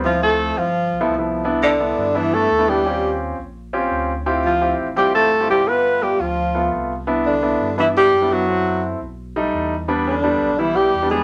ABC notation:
X:1
M:4/4
L:1/16
Q:1/4=171
K:C
V:1 name="Alto saxophone"
F2 A4 F6 z4 | z2 D6 E2 A4 G2- | G4 z12 | z2 F4 z2 G2 A4 G2 |
B4 G2 F6 z4 | z2 D6 E2 G4 ^F2- | ^F4 z12 | z2 D6 E2 G4 ^G2 |]
V:2 name="Grand piano"
[F,CE]6 z4 z [F,A,B,E] z [F,A,B,E]3 | [B,DE]3 z [B,DE]3 z [B,DE]4 z [B,DE] [B,DE] z | [^B,^C^EG]6 z4 [B,CEG]4 z2 | [CEFG]3 z [CEFG]3 z [CEFG]4 z [CEFG] [CEFG] z |
[A,B,F]6 z4 [A,B,F]4 z2 | [B,DE]3 z [B,DE]3 z [B,DE]4 z [B,DE] [B,DE] z | [A,CE]6 z4 [G,A,^D]4 z2 | [G,B,D]3 z [G,B,D]3 z [G,B,E]4 z [G,B,D] [G,B,D] z |]
V:3 name="Tenor saxophone" clef=bass
F,2 A,4 F,6 z4 | z2 D,6 E,2 A,4 G,2- | G,4 z12 | z2 F,4 z2 G,2 A,4 G,2 |
B,4 G,2 F,6 z4 | z2 D,6 E,2 G,4 ^F,2- | ^F,4 z12 | z2 D,6 E,2 G,4 ^G,2 |]
V:4 name="Sub bass" clef=bass
D,,6 G,,,4 B,,,2 C,,4- | C,,6 G,,6 ^D,,4- | ^D,,6 ^A,,,6 =D,,4- | D,,6 A,,,6 G,,,4- |
G,,,6 D,,6 C,,4- | C,,6 G,,6 ^F,,4- | ^F,,6 B,,,6 E,,4- | E,,6 B,,,6 E,,4 |]